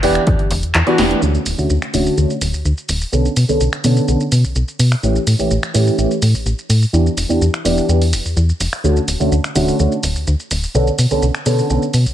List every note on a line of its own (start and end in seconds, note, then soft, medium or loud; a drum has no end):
0.03 0.19 E1 medium
0.03 0.21 E3 loud
0.03 0.21 B3 medium
0.03 0.21 D4 medium
0.03 0.21 G4 loud
0.03 open hi-hat loud
0.15 finger snap medium
0.15 closed hi-hat medium
0.26 0.35 E2 medium
0.26 0.38 E3 medium
0.26 0.38 B3 medium
0.26 0.38 D4 medium
0.26 0.39 G4 medium
0.26 kick loud
0.26 closed hi-hat medium
0.39 closed hi-hat soft
0.51 0.63 E1 loud
0.51 open hi-hat loud
0.63 0.72 E2 soft
0.63 closed hi-hat medium
0.74 0.83 E2 medium
0.74 clap loud
0.74 closed hi-hat medium
0.87 0.96 E3 medium
0.87 0.96 B3 medium
0.87 0.96 D4 medium
0.87 0.96 F#4 loud
0.87 closed hi-hat soft
0.98 1.14 E1 medium
0.98 1.19 E3 medium
0.98 1.20 B3 medium
0.98 1.20 D4 medium
0.98 1.20 G4 medium
0.98 snare medium
0.98 open hi-hat loud
1.11 closed hi-hat medium
1.22 1.38 D2 medium
1.22 1.34 D3 medium
1.22 1.34 A3 medium
1.22 1.34 C#4 medium
1.22 shaker soft
1.35 shaker soft
1.46 1.54 D1 medium
1.46 open hi-hat loud
1.46 shaker medium
1.58 1.68 D2 soft
1.58 1.69 D3 medium
1.58 1.69 A3 medium
1.58 1.69 C#4 medium
1.58 1.69 F#4 medium
1.58 shaker soft
1.70 1.78 D2 medium
1.70 shaker soft
1.82 finger snap medium
1.82 shaker soft
1.93 2.09 D1 medium
1.93 2.11 D3 medium
1.93 2.12 A3 medium
1.93 2.12 C#4 medium
1.93 2.12 F#4 loud
1.93 open hi-hat loud
1.93 shaker medium
2.06 shaker soft
2.17 2.25 D2 medium
2.17 2.29 D3 medium
2.17 2.29 A3 medium
2.17 2.29 C#4 medium
2.17 2.29 F#4 medium
2.17 shaker soft
2.30 shaker soft
2.41 2.53 D1 loud
2.41 open hi-hat loud
2.41 shaker medium
2.54 2.63 D2 soft
2.54 shaker soft
2.65 2.73 D2 medium
2.65 shaker soft
2.78 shaker soft
2.89 3.04 D1 medium
2.89 open hi-hat loud
2.89 shaker medium
3.01 shaker soft
3.12 3.28 B1 medium
3.12 3.24 D3 medium
3.12 3.24 B3 medium
3.12 3.24 C#4 medium
3.12 3.24 A4 medium
3.12 shaker soft
3.25 shaker soft
3.36 3.44 B2 medium
3.36 open hi-hat loud
3.36 shaker medium
3.48 3.58 B1 soft
3.48 3.59 D3 medium
3.48 3.59 B3 medium
3.48 3.60 C#4 medium
3.48 3.60 A4 medium
3.48 shaker soft
3.60 3.68 B1 medium
3.60 shaker soft
3.73 finger snap medium
3.73 shaker soft
3.84 4.00 B2 medium
3.84 4.02 D3 medium
3.84 4.02 B3 medium
3.84 4.02 C#4 medium
3.84 4.02 A4 loud
3.84 open hi-hat loud
3.84 shaker medium
3.97 shaker soft
4.08 4.16 B1 medium
4.08 4.19 D3 medium
4.08 4.20 B3 medium
4.08 4.20 C#4 medium
4.08 4.20 A4 medium
4.08 shaker soft
4.20 shaker soft
4.32 4.44 B2 loud
4.32 open hi-hat loud
4.32 shaker medium
4.44 4.54 B1 soft
4.44 shaker soft
4.56 4.63 B1 medium
4.56 shaker soft
4.68 shaker soft
4.79 4.95 B2 medium
4.79 open hi-hat loud
4.79 shaker medium
4.92 finger snap medium
4.92 shaker soft
5.03 5.19 A1 loud
5.03 5.15 E3 medium
5.03 5.15 A3 medium
5.03 5.15 C#4 medium
5.03 5.15 G4 medium
5.03 shaker soft
5.16 shaker soft
5.27 5.35 A2 medium
5.27 open hi-hat loud
5.27 shaker medium
5.39 5.49 A1 soft
5.39 5.50 E3 medium
5.39 5.50 A3 medium
5.39 5.50 C#4 medium
5.39 5.50 G4 medium
5.39 shaker soft
5.51 5.59 A1 medium
5.51 shaker soft
5.63 finger snap medium
5.63 shaker soft
5.74 5.90 A2 medium
5.74 5.92 E3 medium
5.74 5.92 A3 medium
5.74 5.93 C#4 medium
5.74 5.93 G4 loud
5.74 open hi-hat loud
5.74 shaker medium
5.87 shaker soft
5.98 6.06 A1 medium
5.98 6.10 E3 medium
5.98 6.10 A3 medium
5.98 6.10 C#4 medium
5.98 6.10 G4 medium
5.98 shaker soft
6.11 shaker soft
6.22 6.34 A2 loud
6.22 open hi-hat loud
6.22 shaker medium
6.35 6.44 A1 soft
6.35 shaker soft
6.46 6.54 A1 medium
6.46 shaker soft
6.59 shaker soft
6.70 6.85 A2 medium
6.70 open hi-hat loud
6.70 shaker medium
6.82 shaker soft
6.93 7.09 E2 loud
6.93 7.05 E3 medium
6.93 7.05 B3 medium
6.93 7.05 D4 medium
6.93 7.05 G4 medium
6.93 shaker soft
7.06 shaker soft
7.17 7.25 E1 medium
7.17 open hi-hat loud
7.17 shaker medium
7.29 7.39 E2 soft
7.29 7.40 E3 medium
7.29 7.40 B3 medium
7.29 7.40 D4 medium
7.29 7.40 G4 medium
7.29 shaker soft
7.41 7.49 E2 medium
7.41 shaker soft
7.54 finger snap medium
7.54 shaker soft
7.65 7.80 E1 medium
7.65 7.83 E3 medium
7.65 7.83 B3 medium
7.65 7.83 D4 medium
7.65 7.83 G4 loud
7.65 open hi-hat loud
7.65 shaker medium
7.78 shaker soft
7.89 8.14 E2 medium
7.89 8.00 E3 medium
7.89 8.00 B3 medium
7.89 8.01 D4 medium
7.89 8.01 G4 medium
7.89 shaker soft
8.02 open hi-hat medium
8.02 shaker soft
8.13 8.21 E1 medium
8.13 open hi-hat loud
8.13 shaker medium
8.25 8.34 E2 soft
8.25 shaker soft
8.37 8.52 E2 medium
8.37 shaker soft
8.49 shaker soft
8.60 8.68 E1 medium
8.60 open hi-hat loud
8.60 shaker medium
8.73 finger snap medium
8.73 shaker soft
8.84 8.99 D2 medium
8.84 8.95 D3 medium
8.84 8.96 A3 medium
8.84 8.96 C#4 medium
8.84 8.96 F#4 medium
8.84 shaker soft
8.97 shaker soft
9.08 9.16 D1 medium
9.08 open hi-hat loud
9.08 shaker medium
9.20 9.29 D2 soft
9.20 9.31 D3 medium
9.20 9.31 A3 medium
9.20 9.31 C#4 medium
9.20 9.31 F#4 medium
9.20 shaker soft
9.32 9.40 D2 medium
9.32 shaker soft
9.44 finger snap medium
9.44 shaker soft
9.55 9.71 D1 medium
9.55 9.73 D3 medium
9.55 9.73 A3 medium
9.55 9.74 C#4 medium
9.55 9.74 F#4 loud
9.55 open hi-hat loud
9.55 shaker medium
9.68 shaker soft
9.79 9.87 D2 medium
9.79 9.91 D3 medium
9.79 9.91 A3 medium
9.79 9.91 C#4 medium
9.79 9.91 F#4 medium
9.79 shaker soft
9.92 shaker soft
10.03 10.15 D1 loud
10.03 open hi-hat loud
10.03 shaker medium
10.16 10.25 D2 soft
10.16 shaker soft
10.27 10.35 D2 medium
10.27 shaker soft
10.40 shaker soft
10.51 10.66 D1 medium
10.51 open hi-hat loud
10.51 shaker medium
10.63 shaker soft
10.75 10.90 B1 loud
10.75 10.86 D3 medium
10.75 10.86 B3 medium
10.75 10.86 C#4 medium
10.75 10.87 A4 medium
10.75 shaker soft
10.87 shaker soft
10.99 11.06 B2 medium
10.99 open hi-hat loud
10.99 shaker medium
11.11 11.20 B1 soft
11.11 11.21 D3 medium
11.11 11.22 B3 medium
11.11 11.22 C#4 medium
11.11 11.22 A4 medium
11.11 shaker soft
11.22 11.30 B1 medium
11.22 shaker soft
11.35 finger snap medium
11.35 shaker soft
11.46 11.61 B2 medium
11.46 11.64 D3 medium
11.46 11.64 B3 medium
11.46 11.64 C#4 medium
11.46 11.64 A4 loud
11.46 open hi-hat medium
11.46 shaker medium
11.58 shaker soft
11.70 11.78 B1 medium
11.70 11.81 D3 medium
11.70 11.81 B3 medium
11.70 11.81 C#4 medium
11.70 11.82 A4 medium
11.70 shaker soft
11.82 shaker soft
11.94 12.06 B2 medium
11.94 open hi-hat loud
11.94 shaker medium
12.06 12.14 B1 soft
12.06 shaker soft